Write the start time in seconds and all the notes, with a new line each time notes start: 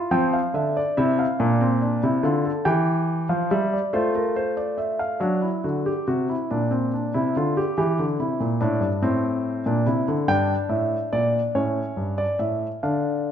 Already playing: F4
0.11 F3 C4 G5
0.33 F5
0.54 D3 D4 E5
0.77 D5
0.97 C3 E4 E5
1.19 F5
1.40 A#2 D4
1.61 C4
1.82 D4
2.03 C3 E4
2.23 D3 F4
2.45 A4
2.65 E3 G4 G5
3.29 F3 F5
3.51 G3 E5
3.74 D5
3.93 A3 F4 C5
4.15 A#4
4.36 C5
4.57 D5
4.78 E5
4.99 F5
5.20 F#3 D4
5.42 E4
5.64 D3 F#4
5.86 G4
6.07 C3 F#4
6.29 E4
6.51 A#2 D4
6.71 C4
6.93 D4
7.14 C3 E4
7.36 D3 F4
7.57 G4
7.78 E3 G4
7.99 D3
8.20 C3 E4
8.40 A#2
8.61 A2 D4
8.81 G2
9.02 A2 C4
9.66 A#2 D4
9.86 C3 E4
10.08 D3
10.28 G2 D4 G5
10.69 A2 E5
11.13 A#2 D5
11.55 A2 C#4 C#5
11.97 G2
12.18 D5
12.39 A2 E5
12.83 D3 D4 F5